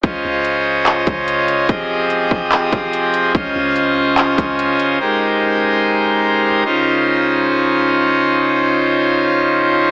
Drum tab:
HH |x-x-xxxx|x-x-xxxx|x-x-xxxx|--------|
CP |----x---|----x---|----x---|--------|
BD |o----o--|o--o-o--|o----o--|--------|

HH |--------|--------|
CP |--------|--------|
BD |--------|--------|